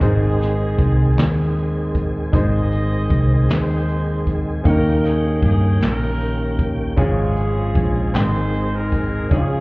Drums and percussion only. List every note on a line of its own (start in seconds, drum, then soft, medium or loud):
0.01 kick medium
0.01 closed hi-hat medium
0.40 snare soft
0.40 closed hi-hat soft
0.78 kick medium
0.78 closed hi-hat soft
1.17 snare medium
1.17 clap medium
1.17 closed hi-hat medium
1.57 closed hi-hat soft
1.95 kick medium
1.95 closed hi-hat medium
2.33 kick loud
2.33 closed hi-hat medium
2.72 closed hi-hat medium
3.10 kick medium
3.10 closed hi-hat soft
3.49 snare medium
3.49 clap medium
3.49 closed hi-hat medium
3.88 closed hi-hat soft
4.27 kick medium
4.27 closed hi-hat soft
4.65 kick loud
4.65 closed hi-hat medium
5.04 snare soft
5.04 closed hi-hat soft
5.42 kick medium
5.42 closed hi-hat soft
5.81 snare loud
5.81 closed hi-hat medium
5.85 clap medium
6.20 closed hi-hat soft
6.58 kick medium
6.58 closed hi-hat medium
6.97 kick loud
6.97 closed hi-hat medium
7.36 closed hi-hat soft
7.75 kick medium
7.75 closed hi-hat soft
8.14 snare loud
8.14 clap medium
8.14 closed hi-hat medium
8.53 closed hi-hat soft
8.92 kick medium
8.92 closed hi-hat medium
9.31 kick loud
9.31 closed hi-hat medium